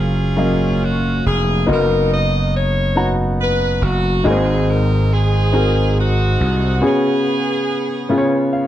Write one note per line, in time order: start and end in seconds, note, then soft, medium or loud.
0.00 1.21 F#1 medium
0.00 0.30 F#3 medium
0.00 0.30 A#3 medium
0.00 0.36 A#3 medium
0.00 0.30 C#4 medium
0.00 1.22 C#4 medium
0.00 1.22 F4 medium
0.00 0.83 G#4 medium
0.00 0.31 C#5 medium
0.00 0.30 F5 medium
0.36 1.59 F#3 soft
0.36 1.59 A#3 medium
0.36 1.59 C#4 soft
0.36 1.60 D#5 medium
0.36 1.59 F5 soft
0.84 1.26 F#4 medium
1.26 1.65 F1 medium
1.26 1.66 G#4 medium
1.66 3.79 F#1 medium
1.66 2.88 B3 medium
1.66 2.88 D#4 medium
1.66 2.89 F#4 medium
1.66 2.89 A#4 medium
1.66 2.89 D#5 medium
1.70 2.94 D#4 medium
1.70 2.12 A#4 medium
2.12 2.52 D#5 medium
2.55 3.13 C#5 medium
2.96 4.17 B3 medium
2.96 4.17 D#4 soft
2.96 4.18 F#4 medium
2.96 4.18 F#5 medium
2.96 4.18 A#5 soft
3.41 3.80 B4 medium
3.82 4.22 F#1 medium
3.82 4.26 F#4 medium
4.24 6.36 G#1 medium
4.24 5.50 G#2 soft
4.24 4.31 A#3 medium
4.24 5.11 C4 medium
4.24 5.46 D#4 medium
4.24 5.11 D#4 medium
4.24 5.46 F#4 medium
4.24 5.46 G#4 medium
4.24 4.69 G#4 medium
4.24 5.46 D#5 medium
4.30 5.49 C4 medium
4.69 5.12 A#4 medium
5.12 5.97 C4 medium
5.12 5.97 D#4 medium
5.12 5.98 G#4 medium
5.52 6.74 C4 medium
5.52 6.74 D#4 medium
5.52 6.75 F#4 soft
5.52 6.75 G#4 medium
5.52 6.75 A#4 medium
5.98 6.79 C4 medium
5.98 6.79 D#4 medium
5.98 6.80 F#4 medium
6.40 6.80 C2 medium
6.81 8.07 C#3 soft
6.81 8.03 B3 medium
6.81 8.51 B3 medium
6.81 8.03 C#4 medium
6.81 8.03 F#4 medium
6.81 8.04 G#4 medium
6.81 8.04 C#5 medium
6.85 8.52 G#4 medium
8.09 8.67 C#3 medium
8.09 8.67 B3 medium
8.09 8.67 C#4 medium
8.09 8.67 F4 medium
8.09 8.67 G#4 medium
8.09 8.18 B4 medium
8.18 8.67 C#5 medium
8.53 8.67 F5 medium